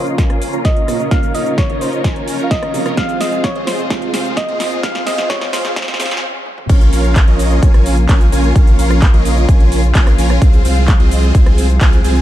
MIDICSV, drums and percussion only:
0, 0, Header, 1, 2, 480
1, 0, Start_track
1, 0, Tempo, 465116
1, 1150, Time_signature, 4, 2, 24, 8
1, 12607, End_track
2, 0, Start_track
2, 0, Title_t, "Drums"
2, 69, Note_on_c, 9, 42, 39
2, 74, Note_on_c, 9, 82, 32
2, 172, Note_off_c, 9, 42, 0
2, 177, Note_off_c, 9, 82, 0
2, 189, Note_on_c, 9, 36, 114
2, 189, Note_on_c, 9, 38, 55
2, 189, Note_on_c, 9, 42, 95
2, 194, Note_on_c, 9, 82, 47
2, 292, Note_off_c, 9, 36, 0
2, 293, Note_off_c, 9, 38, 0
2, 293, Note_off_c, 9, 42, 0
2, 298, Note_off_c, 9, 82, 0
2, 309, Note_on_c, 9, 37, 63
2, 309, Note_on_c, 9, 42, 42
2, 412, Note_off_c, 9, 37, 0
2, 412, Note_off_c, 9, 42, 0
2, 429, Note_on_c, 9, 46, 100
2, 434, Note_on_c, 9, 82, 77
2, 532, Note_off_c, 9, 46, 0
2, 537, Note_off_c, 9, 82, 0
2, 549, Note_on_c, 9, 42, 40
2, 554, Note_on_c, 9, 82, 33
2, 652, Note_off_c, 9, 42, 0
2, 657, Note_off_c, 9, 82, 0
2, 669, Note_on_c, 9, 36, 109
2, 669, Note_on_c, 9, 38, 59
2, 669, Note_on_c, 9, 42, 97
2, 674, Note_on_c, 9, 82, 44
2, 772, Note_off_c, 9, 36, 0
2, 772, Note_off_c, 9, 38, 0
2, 772, Note_off_c, 9, 42, 0
2, 777, Note_off_c, 9, 82, 0
2, 789, Note_on_c, 9, 42, 40
2, 892, Note_off_c, 9, 42, 0
2, 910, Note_on_c, 9, 37, 58
2, 910, Note_on_c, 9, 46, 97
2, 914, Note_on_c, 9, 82, 74
2, 1013, Note_off_c, 9, 37, 0
2, 1013, Note_off_c, 9, 46, 0
2, 1018, Note_off_c, 9, 82, 0
2, 1029, Note_on_c, 9, 42, 39
2, 1034, Note_on_c, 9, 82, 33
2, 1132, Note_off_c, 9, 42, 0
2, 1137, Note_off_c, 9, 82, 0
2, 1149, Note_on_c, 9, 36, 124
2, 1149, Note_on_c, 9, 38, 61
2, 1149, Note_on_c, 9, 42, 94
2, 1154, Note_on_c, 9, 82, 42
2, 1252, Note_off_c, 9, 36, 0
2, 1252, Note_off_c, 9, 38, 0
2, 1252, Note_off_c, 9, 42, 0
2, 1257, Note_off_c, 9, 82, 0
2, 1269, Note_on_c, 9, 42, 40
2, 1274, Note_on_c, 9, 82, 33
2, 1372, Note_off_c, 9, 42, 0
2, 1377, Note_off_c, 9, 82, 0
2, 1388, Note_on_c, 9, 46, 102
2, 1394, Note_on_c, 9, 82, 73
2, 1492, Note_off_c, 9, 46, 0
2, 1497, Note_off_c, 9, 82, 0
2, 1510, Note_on_c, 9, 42, 40
2, 1514, Note_on_c, 9, 82, 32
2, 1613, Note_off_c, 9, 42, 0
2, 1618, Note_off_c, 9, 82, 0
2, 1629, Note_on_c, 9, 36, 125
2, 1630, Note_on_c, 9, 38, 62
2, 1630, Note_on_c, 9, 42, 88
2, 1635, Note_on_c, 9, 82, 40
2, 1732, Note_off_c, 9, 36, 0
2, 1733, Note_off_c, 9, 38, 0
2, 1733, Note_off_c, 9, 42, 0
2, 1738, Note_off_c, 9, 82, 0
2, 1750, Note_on_c, 9, 42, 41
2, 1853, Note_off_c, 9, 42, 0
2, 1870, Note_on_c, 9, 46, 99
2, 1875, Note_on_c, 9, 82, 76
2, 1973, Note_off_c, 9, 46, 0
2, 1979, Note_off_c, 9, 82, 0
2, 1990, Note_on_c, 9, 42, 39
2, 1995, Note_on_c, 9, 82, 33
2, 2093, Note_off_c, 9, 42, 0
2, 2098, Note_off_c, 9, 82, 0
2, 2109, Note_on_c, 9, 36, 127
2, 2110, Note_on_c, 9, 38, 67
2, 2110, Note_on_c, 9, 42, 100
2, 2115, Note_on_c, 9, 82, 44
2, 2212, Note_off_c, 9, 36, 0
2, 2214, Note_off_c, 9, 38, 0
2, 2214, Note_off_c, 9, 42, 0
2, 2219, Note_off_c, 9, 82, 0
2, 2230, Note_on_c, 9, 42, 39
2, 2333, Note_off_c, 9, 42, 0
2, 2349, Note_on_c, 9, 46, 108
2, 2354, Note_on_c, 9, 82, 76
2, 2452, Note_off_c, 9, 46, 0
2, 2457, Note_off_c, 9, 82, 0
2, 2468, Note_on_c, 9, 42, 41
2, 2473, Note_on_c, 9, 82, 32
2, 2572, Note_off_c, 9, 42, 0
2, 2577, Note_off_c, 9, 82, 0
2, 2589, Note_on_c, 9, 36, 121
2, 2589, Note_on_c, 9, 38, 68
2, 2589, Note_on_c, 9, 42, 98
2, 2594, Note_on_c, 9, 82, 43
2, 2692, Note_off_c, 9, 36, 0
2, 2692, Note_off_c, 9, 38, 0
2, 2692, Note_off_c, 9, 42, 0
2, 2697, Note_off_c, 9, 82, 0
2, 2709, Note_on_c, 9, 37, 77
2, 2709, Note_on_c, 9, 42, 37
2, 2813, Note_off_c, 9, 37, 0
2, 2813, Note_off_c, 9, 42, 0
2, 2828, Note_on_c, 9, 46, 100
2, 2833, Note_on_c, 9, 82, 76
2, 2932, Note_off_c, 9, 46, 0
2, 2937, Note_off_c, 9, 82, 0
2, 2948, Note_on_c, 9, 37, 81
2, 2948, Note_on_c, 9, 42, 39
2, 2953, Note_on_c, 9, 82, 31
2, 3051, Note_off_c, 9, 37, 0
2, 3051, Note_off_c, 9, 42, 0
2, 3056, Note_off_c, 9, 82, 0
2, 3068, Note_on_c, 9, 38, 74
2, 3068, Note_on_c, 9, 42, 94
2, 3069, Note_on_c, 9, 36, 127
2, 3073, Note_on_c, 9, 82, 42
2, 3172, Note_off_c, 9, 36, 0
2, 3172, Note_off_c, 9, 38, 0
2, 3172, Note_off_c, 9, 42, 0
2, 3177, Note_off_c, 9, 82, 0
2, 3188, Note_on_c, 9, 42, 42
2, 3193, Note_on_c, 9, 82, 33
2, 3291, Note_off_c, 9, 42, 0
2, 3296, Note_off_c, 9, 82, 0
2, 3308, Note_on_c, 9, 38, 70
2, 3308, Note_on_c, 9, 46, 103
2, 3313, Note_on_c, 9, 82, 75
2, 3411, Note_off_c, 9, 38, 0
2, 3411, Note_off_c, 9, 46, 0
2, 3416, Note_off_c, 9, 82, 0
2, 3429, Note_on_c, 9, 42, 39
2, 3434, Note_on_c, 9, 82, 32
2, 3532, Note_off_c, 9, 42, 0
2, 3537, Note_off_c, 9, 82, 0
2, 3549, Note_on_c, 9, 36, 127
2, 3549, Note_on_c, 9, 38, 76
2, 3549, Note_on_c, 9, 42, 81
2, 3554, Note_on_c, 9, 82, 41
2, 3652, Note_off_c, 9, 36, 0
2, 3652, Note_off_c, 9, 38, 0
2, 3652, Note_off_c, 9, 42, 0
2, 3657, Note_off_c, 9, 82, 0
2, 3669, Note_on_c, 9, 42, 37
2, 3772, Note_off_c, 9, 42, 0
2, 3789, Note_on_c, 9, 38, 82
2, 3789, Note_on_c, 9, 46, 101
2, 3794, Note_on_c, 9, 82, 74
2, 3892, Note_off_c, 9, 38, 0
2, 3892, Note_off_c, 9, 46, 0
2, 3897, Note_off_c, 9, 82, 0
2, 3914, Note_on_c, 9, 82, 31
2, 4018, Note_off_c, 9, 82, 0
2, 4029, Note_on_c, 9, 36, 127
2, 4029, Note_on_c, 9, 38, 89
2, 4029, Note_on_c, 9, 42, 99
2, 4034, Note_on_c, 9, 82, 45
2, 4132, Note_off_c, 9, 36, 0
2, 4132, Note_off_c, 9, 38, 0
2, 4132, Note_off_c, 9, 42, 0
2, 4137, Note_off_c, 9, 82, 0
2, 4149, Note_on_c, 9, 42, 37
2, 4252, Note_off_c, 9, 42, 0
2, 4269, Note_on_c, 9, 38, 85
2, 4269, Note_on_c, 9, 46, 110
2, 4274, Note_on_c, 9, 82, 75
2, 4372, Note_off_c, 9, 38, 0
2, 4372, Note_off_c, 9, 46, 0
2, 4377, Note_off_c, 9, 82, 0
2, 4394, Note_on_c, 9, 82, 33
2, 4497, Note_off_c, 9, 82, 0
2, 4509, Note_on_c, 9, 36, 121
2, 4509, Note_on_c, 9, 38, 87
2, 4509, Note_on_c, 9, 42, 92
2, 4514, Note_on_c, 9, 82, 42
2, 4612, Note_off_c, 9, 36, 0
2, 4612, Note_off_c, 9, 38, 0
2, 4612, Note_off_c, 9, 42, 0
2, 4617, Note_off_c, 9, 82, 0
2, 4629, Note_on_c, 9, 42, 37
2, 4732, Note_off_c, 9, 42, 0
2, 4748, Note_on_c, 9, 38, 93
2, 4748, Note_on_c, 9, 46, 105
2, 4753, Note_on_c, 9, 82, 74
2, 4851, Note_off_c, 9, 38, 0
2, 4851, Note_off_c, 9, 46, 0
2, 4856, Note_off_c, 9, 82, 0
2, 4874, Note_on_c, 9, 82, 33
2, 4977, Note_off_c, 9, 82, 0
2, 4989, Note_on_c, 9, 36, 127
2, 4989, Note_on_c, 9, 38, 98
2, 4989, Note_on_c, 9, 42, 89
2, 4994, Note_on_c, 9, 82, 44
2, 5092, Note_off_c, 9, 36, 0
2, 5092, Note_off_c, 9, 38, 0
2, 5092, Note_off_c, 9, 42, 0
2, 5097, Note_off_c, 9, 82, 0
2, 5109, Note_on_c, 9, 38, 84
2, 5109, Note_on_c, 9, 42, 40
2, 5114, Note_on_c, 9, 82, 31
2, 5213, Note_off_c, 9, 38, 0
2, 5213, Note_off_c, 9, 42, 0
2, 5218, Note_off_c, 9, 82, 0
2, 5228, Note_on_c, 9, 38, 88
2, 5228, Note_on_c, 9, 46, 102
2, 5233, Note_on_c, 9, 82, 71
2, 5331, Note_off_c, 9, 38, 0
2, 5331, Note_off_c, 9, 46, 0
2, 5336, Note_off_c, 9, 82, 0
2, 5348, Note_on_c, 9, 38, 86
2, 5348, Note_on_c, 9, 42, 38
2, 5353, Note_on_c, 9, 82, 33
2, 5452, Note_off_c, 9, 38, 0
2, 5452, Note_off_c, 9, 42, 0
2, 5457, Note_off_c, 9, 82, 0
2, 5468, Note_on_c, 9, 38, 99
2, 5468, Note_on_c, 9, 42, 85
2, 5469, Note_on_c, 9, 36, 127
2, 5473, Note_on_c, 9, 82, 42
2, 5571, Note_off_c, 9, 38, 0
2, 5571, Note_off_c, 9, 42, 0
2, 5572, Note_off_c, 9, 36, 0
2, 5576, Note_off_c, 9, 82, 0
2, 5588, Note_on_c, 9, 38, 87
2, 5588, Note_on_c, 9, 42, 37
2, 5692, Note_off_c, 9, 38, 0
2, 5692, Note_off_c, 9, 42, 0
2, 5708, Note_on_c, 9, 38, 100
2, 5708, Note_on_c, 9, 46, 100
2, 5713, Note_on_c, 9, 82, 79
2, 5812, Note_off_c, 9, 38, 0
2, 5812, Note_off_c, 9, 46, 0
2, 5817, Note_off_c, 9, 82, 0
2, 5829, Note_on_c, 9, 38, 85
2, 5829, Note_on_c, 9, 42, 37
2, 5834, Note_on_c, 9, 82, 32
2, 5932, Note_off_c, 9, 38, 0
2, 5932, Note_off_c, 9, 42, 0
2, 5937, Note_off_c, 9, 82, 0
2, 5949, Note_on_c, 9, 36, 126
2, 5949, Note_on_c, 9, 38, 112
2, 5949, Note_on_c, 9, 42, 91
2, 5954, Note_on_c, 9, 82, 46
2, 6009, Note_off_c, 9, 38, 0
2, 6009, Note_on_c, 9, 38, 95
2, 6052, Note_off_c, 9, 36, 0
2, 6052, Note_off_c, 9, 42, 0
2, 6057, Note_off_c, 9, 82, 0
2, 6070, Note_off_c, 9, 38, 0
2, 6070, Note_on_c, 9, 38, 93
2, 6070, Note_on_c, 9, 42, 38
2, 6129, Note_off_c, 9, 38, 0
2, 6129, Note_on_c, 9, 38, 93
2, 6173, Note_off_c, 9, 42, 0
2, 6189, Note_off_c, 9, 38, 0
2, 6189, Note_on_c, 9, 38, 108
2, 6189, Note_on_c, 9, 46, 109
2, 6194, Note_on_c, 9, 82, 82
2, 6249, Note_off_c, 9, 38, 0
2, 6249, Note_on_c, 9, 38, 90
2, 6293, Note_off_c, 9, 46, 0
2, 6298, Note_off_c, 9, 82, 0
2, 6309, Note_off_c, 9, 38, 0
2, 6309, Note_on_c, 9, 38, 98
2, 6309, Note_on_c, 9, 42, 40
2, 6314, Note_on_c, 9, 82, 34
2, 6369, Note_off_c, 9, 38, 0
2, 6369, Note_on_c, 9, 38, 96
2, 6413, Note_off_c, 9, 42, 0
2, 6418, Note_off_c, 9, 82, 0
2, 6472, Note_off_c, 9, 38, 0
2, 6670, Note_on_c, 9, 48, 62
2, 6773, Note_off_c, 9, 48, 0
2, 6790, Note_on_c, 9, 47, 75
2, 6893, Note_off_c, 9, 47, 0
2, 6909, Note_on_c, 9, 42, 105
2, 6909, Note_on_c, 9, 49, 109
2, 6910, Note_on_c, 9, 36, 124
2, 6914, Note_on_c, 9, 82, 44
2, 7012, Note_off_c, 9, 42, 0
2, 7012, Note_off_c, 9, 49, 0
2, 7013, Note_off_c, 9, 36, 0
2, 7017, Note_off_c, 9, 82, 0
2, 7029, Note_on_c, 9, 42, 45
2, 7035, Note_on_c, 9, 82, 34
2, 7133, Note_off_c, 9, 42, 0
2, 7138, Note_off_c, 9, 82, 0
2, 7148, Note_on_c, 9, 46, 102
2, 7153, Note_on_c, 9, 82, 74
2, 7252, Note_off_c, 9, 46, 0
2, 7257, Note_off_c, 9, 82, 0
2, 7269, Note_on_c, 9, 42, 42
2, 7274, Note_on_c, 9, 82, 36
2, 7373, Note_off_c, 9, 42, 0
2, 7378, Note_off_c, 9, 82, 0
2, 7389, Note_on_c, 9, 39, 116
2, 7389, Note_on_c, 9, 42, 91
2, 7390, Note_on_c, 9, 36, 127
2, 7394, Note_on_c, 9, 82, 43
2, 7492, Note_off_c, 9, 39, 0
2, 7492, Note_off_c, 9, 42, 0
2, 7493, Note_off_c, 9, 36, 0
2, 7497, Note_off_c, 9, 82, 0
2, 7509, Note_on_c, 9, 42, 43
2, 7612, Note_off_c, 9, 42, 0
2, 7629, Note_on_c, 9, 46, 97
2, 7634, Note_on_c, 9, 82, 83
2, 7733, Note_off_c, 9, 46, 0
2, 7738, Note_off_c, 9, 82, 0
2, 7750, Note_on_c, 9, 42, 42
2, 7755, Note_on_c, 9, 82, 36
2, 7853, Note_off_c, 9, 42, 0
2, 7858, Note_off_c, 9, 82, 0
2, 7870, Note_on_c, 9, 36, 127
2, 7870, Note_on_c, 9, 42, 103
2, 7875, Note_on_c, 9, 82, 50
2, 7973, Note_off_c, 9, 36, 0
2, 7974, Note_off_c, 9, 42, 0
2, 7979, Note_off_c, 9, 82, 0
2, 7990, Note_on_c, 9, 37, 63
2, 7990, Note_on_c, 9, 42, 42
2, 8093, Note_off_c, 9, 37, 0
2, 8093, Note_off_c, 9, 42, 0
2, 8110, Note_on_c, 9, 46, 111
2, 8115, Note_on_c, 9, 82, 78
2, 8213, Note_off_c, 9, 46, 0
2, 8218, Note_off_c, 9, 82, 0
2, 8230, Note_on_c, 9, 42, 44
2, 8235, Note_on_c, 9, 82, 34
2, 8333, Note_off_c, 9, 42, 0
2, 8338, Note_off_c, 9, 82, 0
2, 8350, Note_on_c, 9, 36, 121
2, 8350, Note_on_c, 9, 42, 99
2, 8351, Note_on_c, 9, 39, 126
2, 8355, Note_on_c, 9, 82, 47
2, 8453, Note_off_c, 9, 36, 0
2, 8454, Note_off_c, 9, 39, 0
2, 8454, Note_off_c, 9, 42, 0
2, 8459, Note_off_c, 9, 82, 0
2, 8471, Note_on_c, 9, 42, 42
2, 8476, Note_on_c, 9, 82, 32
2, 8574, Note_off_c, 9, 42, 0
2, 8579, Note_off_c, 9, 82, 0
2, 8590, Note_on_c, 9, 46, 98
2, 8595, Note_on_c, 9, 82, 82
2, 8693, Note_off_c, 9, 46, 0
2, 8698, Note_off_c, 9, 82, 0
2, 8710, Note_on_c, 9, 42, 42
2, 8715, Note_on_c, 9, 82, 33
2, 8813, Note_off_c, 9, 42, 0
2, 8819, Note_off_c, 9, 82, 0
2, 8830, Note_on_c, 9, 36, 127
2, 8830, Note_on_c, 9, 42, 98
2, 8835, Note_on_c, 9, 82, 44
2, 8933, Note_off_c, 9, 36, 0
2, 8934, Note_off_c, 9, 42, 0
2, 8939, Note_off_c, 9, 82, 0
2, 8951, Note_on_c, 9, 42, 44
2, 8956, Note_on_c, 9, 82, 33
2, 9054, Note_off_c, 9, 42, 0
2, 9059, Note_off_c, 9, 82, 0
2, 9070, Note_on_c, 9, 46, 106
2, 9075, Note_on_c, 9, 82, 75
2, 9174, Note_off_c, 9, 46, 0
2, 9179, Note_off_c, 9, 82, 0
2, 9190, Note_on_c, 9, 37, 86
2, 9190, Note_on_c, 9, 42, 43
2, 9195, Note_on_c, 9, 82, 34
2, 9293, Note_off_c, 9, 37, 0
2, 9293, Note_off_c, 9, 42, 0
2, 9298, Note_off_c, 9, 82, 0
2, 9310, Note_on_c, 9, 36, 127
2, 9311, Note_on_c, 9, 39, 120
2, 9311, Note_on_c, 9, 42, 89
2, 9316, Note_on_c, 9, 82, 42
2, 9413, Note_off_c, 9, 36, 0
2, 9414, Note_off_c, 9, 39, 0
2, 9414, Note_off_c, 9, 42, 0
2, 9419, Note_off_c, 9, 82, 0
2, 9431, Note_on_c, 9, 42, 41
2, 9534, Note_off_c, 9, 42, 0
2, 9550, Note_on_c, 9, 46, 101
2, 9555, Note_on_c, 9, 82, 80
2, 9653, Note_off_c, 9, 46, 0
2, 9658, Note_off_c, 9, 82, 0
2, 9670, Note_on_c, 9, 42, 40
2, 9675, Note_on_c, 9, 82, 33
2, 9773, Note_off_c, 9, 42, 0
2, 9778, Note_off_c, 9, 82, 0
2, 9790, Note_on_c, 9, 36, 123
2, 9790, Note_on_c, 9, 42, 99
2, 9795, Note_on_c, 9, 82, 44
2, 9893, Note_off_c, 9, 36, 0
2, 9893, Note_off_c, 9, 42, 0
2, 9899, Note_off_c, 9, 82, 0
2, 9911, Note_on_c, 9, 42, 40
2, 10014, Note_off_c, 9, 42, 0
2, 10030, Note_on_c, 9, 46, 112
2, 10035, Note_on_c, 9, 82, 77
2, 10133, Note_off_c, 9, 46, 0
2, 10138, Note_off_c, 9, 82, 0
2, 10150, Note_on_c, 9, 42, 40
2, 10155, Note_on_c, 9, 82, 34
2, 10254, Note_off_c, 9, 42, 0
2, 10259, Note_off_c, 9, 82, 0
2, 10270, Note_on_c, 9, 36, 119
2, 10271, Note_on_c, 9, 39, 127
2, 10271, Note_on_c, 9, 42, 97
2, 10276, Note_on_c, 9, 82, 46
2, 10373, Note_off_c, 9, 36, 0
2, 10374, Note_off_c, 9, 39, 0
2, 10374, Note_off_c, 9, 42, 0
2, 10379, Note_off_c, 9, 82, 0
2, 10390, Note_on_c, 9, 37, 77
2, 10390, Note_on_c, 9, 42, 40
2, 10396, Note_on_c, 9, 82, 29
2, 10494, Note_off_c, 9, 37, 0
2, 10494, Note_off_c, 9, 42, 0
2, 10499, Note_off_c, 9, 82, 0
2, 10510, Note_on_c, 9, 46, 98
2, 10515, Note_on_c, 9, 82, 76
2, 10613, Note_off_c, 9, 46, 0
2, 10618, Note_off_c, 9, 82, 0
2, 10630, Note_on_c, 9, 37, 78
2, 10630, Note_on_c, 9, 42, 39
2, 10635, Note_on_c, 9, 82, 32
2, 10734, Note_off_c, 9, 37, 0
2, 10734, Note_off_c, 9, 42, 0
2, 10739, Note_off_c, 9, 82, 0
2, 10750, Note_on_c, 9, 36, 127
2, 10750, Note_on_c, 9, 42, 98
2, 10755, Note_on_c, 9, 82, 45
2, 10853, Note_off_c, 9, 36, 0
2, 10853, Note_off_c, 9, 42, 0
2, 10858, Note_off_c, 9, 82, 0
2, 10870, Note_on_c, 9, 42, 41
2, 10875, Note_on_c, 9, 82, 32
2, 10974, Note_off_c, 9, 42, 0
2, 10979, Note_off_c, 9, 82, 0
2, 10990, Note_on_c, 9, 46, 104
2, 10995, Note_on_c, 9, 82, 73
2, 11094, Note_off_c, 9, 46, 0
2, 11099, Note_off_c, 9, 82, 0
2, 11111, Note_on_c, 9, 42, 40
2, 11116, Note_on_c, 9, 82, 33
2, 11214, Note_off_c, 9, 42, 0
2, 11219, Note_off_c, 9, 82, 0
2, 11230, Note_on_c, 9, 36, 127
2, 11231, Note_on_c, 9, 39, 119
2, 11231, Note_on_c, 9, 42, 91
2, 11236, Note_on_c, 9, 82, 42
2, 11333, Note_off_c, 9, 36, 0
2, 11334, Note_off_c, 9, 39, 0
2, 11334, Note_off_c, 9, 42, 0
2, 11339, Note_off_c, 9, 82, 0
2, 11351, Note_on_c, 9, 42, 38
2, 11454, Note_off_c, 9, 42, 0
2, 11470, Note_on_c, 9, 46, 96
2, 11475, Note_on_c, 9, 82, 82
2, 11573, Note_off_c, 9, 46, 0
2, 11578, Note_off_c, 9, 82, 0
2, 11591, Note_on_c, 9, 42, 38
2, 11596, Note_on_c, 9, 82, 32
2, 11694, Note_off_c, 9, 42, 0
2, 11699, Note_off_c, 9, 82, 0
2, 11710, Note_on_c, 9, 36, 127
2, 11711, Note_on_c, 9, 42, 100
2, 11716, Note_on_c, 9, 82, 45
2, 11814, Note_off_c, 9, 36, 0
2, 11814, Note_off_c, 9, 42, 0
2, 11819, Note_off_c, 9, 82, 0
2, 11831, Note_on_c, 9, 37, 70
2, 11831, Note_on_c, 9, 42, 39
2, 11934, Note_off_c, 9, 37, 0
2, 11934, Note_off_c, 9, 42, 0
2, 11951, Note_on_c, 9, 46, 114
2, 11956, Note_on_c, 9, 82, 74
2, 12054, Note_off_c, 9, 46, 0
2, 12059, Note_off_c, 9, 82, 0
2, 12070, Note_on_c, 9, 42, 40
2, 12075, Note_on_c, 9, 82, 31
2, 12174, Note_off_c, 9, 42, 0
2, 12179, Note_off_c, 9, 82, 0
2, 12190, Note_on_c, 9, 39, 125
2, 12190, Note_on_c, 9, 42, 94
2, 12191, Note_on_c, 9, 36, 126
2, 12195, Note_on_c, 9, 82, 43
2, 12293, Note_off_c, 9, 39, 0
2, 12293, Note_off_c, 9, 42, 0
2, 12294, Note_off_c, 9, 36, 0
2, 12298, Note_off_c, 9, 82, 0
2, 12310, Note_on_c, 9, 42, 38
2, 12315, Note_on_c, 9, 82, 30
2, 12413, Note_off_c, 9, 42, 0
2, 12418, Note_off_c, 9, 82, 0
2, 12430, Note_on_c, 9, 46, 101
2, 12435, Note_on_c, 9, 82, 73
2, 12533, Note_off_c, 9, 46, 0
2, 12538, Note_off_c, 9, 82, 0
2, 12550, Note_on_c, 9, 42, 40
2, 12555, Note_on_c, 9, 82, 32
2, 12607, Note_off_c, 9, 42, 0
2, 12607, Note_off_c, 9, 82, 0
2, 12607, End_track
0, 0, End_of_file